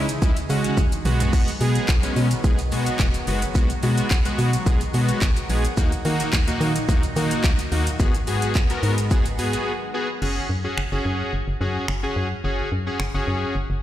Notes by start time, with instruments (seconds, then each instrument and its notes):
Already playing: fm bass C#3, analog synth pad C#3 E3 G#3 D#4 G#4
0.09 closed hi-hat, shaker
0.22 fm bass C#2, analog polysynth G#3 C#4 E4, kick, shaker
0.36 closed hi-hat, shaker
0.49 fm bass C#3, analog polysynth G#3 C#4 F#4, open hi-hat, shaker
0.64 closed hi-hat, shaker
0.77 fm bass F#1, kick, high tom, shaker
0.92 closed hi-hat, shaker
1.05 fm bass B1, analog synth pad D#3 F#3 B3 F#4, analog polysynth G#3 B3 F#4, mid tom, open hi-hat, shaker
1.20 closed hi-hat, floor tom, shaker
1.33 kick, crash, shaker
1.48 closed hi-hat, shaker
1.61 fm bass B2, analog polysynth G#3 B3 G#4, open hi-hat, shaker
1.75 closed hi-hat, shaker
1.89 fm bass B1, kick, clap, shaker
2.03 analog polysynth G#3 B3 C#4, closed hi-hat, shaker
2.16 fm bass B2, open hi-hat, shaker
2.31 closed hi-hat, shaker
2.44 fm bass B1, analog polysynth G#3 B3 G#4, kick, shaker
2.59 closed hi-hat, shaker
2.72 fm bass B2, analog polysynth G#3 B3 F#4, open hi-hat, shaker
2.86 closed hi-hat, shaker
2.99 fm bass E1, kick, clap, shaker
3.14 closed hi-hat, shaker
3.27 fm bass F#1, analog polysynth G#3 B3 F#4, open hi-hat, shaker
3.42 closed hi-hat, shaker
3.55 fm bass B1, analog polysynth G#3 B3 F#4, kick, shaker
3.70 closed hi-hat, shaker
3.83 fm bass B2, analog polysynth G#3 B3 F#4, open hi-hat, shaker
3.97 closed hi-hat, shaker
4.11 fm bass B1, kick, clap, shaker
4.25 analog polysynth G#3 B3 F#4, closed hi-hat, shaker
4.38 fm bass B2, open hi-hat, shaker
4.53 closed hi-hat, shaker
4.66 fm bass B1, analog polysynth G#3 B3 G#4, kick, shaker
4.81 closed hi-hat, shaker
4.94 fm bass B2, analog polysynth G#3 B3 F#4, open hi-hat, shaker
5.09 closed hi-hat, shaker
5.22 fm bass G#1, kick, clap, shaker
5.36 closed hi-hat, shaker
5.50 fm bass A#1, analog polysynth G#3 B3 G#4, open hi-hat, shaker
5.64 closed hi-hat, shaker
5.77 fm bass D#2, analog synth pad A#2 D#4, analog polysynth A#3 D#4 F#4, kick, shaker
5.92 closed hi-hat, shaker
6.05 fm bass D#3, analog polysynth A#3 D#4 F#4, open hi-hat, shaker
6.20 closed hi-hat, shaker
6.33 fm bass D#2, kick, clap, shaker
6.47 analog polysynth A#3 D#4 F#4, closed hi-hat, shaker
6.61 fm bass D#3, open hi-hat, shaker
6.76 closed hi-hat, shaker
6.88 fm bass D#2, analog polysynth A#3 D#4 F#4, kick, shaker
7.03 closed hi-hat, shaker
7.16 fm bass D#3, analog polysynth A#3 D#4 F#4, open hi-hat, shaker
7.31 closed hi-hat, shaker
7.44 fm bass C#2, kick, clap, shaker
7.59 closed hi-hat, shaker
7.72 fm bass D#2, analog polysynth A#3 D#4 F#4, open hi-hat, shaker
7.87 closed hi-hat, shaker
7.99 fm bass G#1, analog synth pad G#3 B3, analog polysynth B3 F#4 G#4, kick, shaker
8.14 closed hi-hat, shaker
8.27 fm bass G#2, analog polysynth B3 F#4 G#4, open hi-hat, shaker
8.42 closed hi-hat, shaker
8.55 fm bass G#1, kick, clap, shaker
8.70 analog polysynth B3 F#4 A#4, closed hi-hat, shaker
8.83 fm bass G#2, open hi-hat, shaker
8.98 closed hi-hat, shaker
9.11 fm bass G#1, analog polysynth B3 F#4 G#4, kick, shaker
9.25 closed hi-hat, shaker
9.38 fm bass G#2, analog polysynth B3 F#4 G#4, open hi-hat, shaker
9.53 closed hi-hat, shaker
9.94 analog polysynth B3 F#4 G#4
10.22 fm bass F#1, analog polysynth C#4 F#4 G#4, crash
10.50 fm bass F#2
10.64 analog polysynth C#4 F#4 G#4
10.78 fm bass F#1, finger snap
10.92 fm bass F#1, analog polysynth C#4 F#4 G#4
11.05 fm bass F#2
11.33 fm bass F#1
11.48 fm bass F#1
11.61 fm bass F#2, analog polysynth C#4 F#4 G#4
11.88 fm bass F#1, finger snap
12.03 analog polysynth C#4 F#4 G#4
12.16 fm bass F#2
12.44 fm bass F#1, analog polysynth C#4 F#4 G#4
12.72 fm bass F#2
12.86 analog polysynth C#4 F#4 G#4
13.00 fm bass F#1, finger snap
13.14 fm bass F#1, analog polysynth C#4 F#4 G#4
13.28 fm bass F#2
13.55 fm bass F#1
13.70 fm bass F#1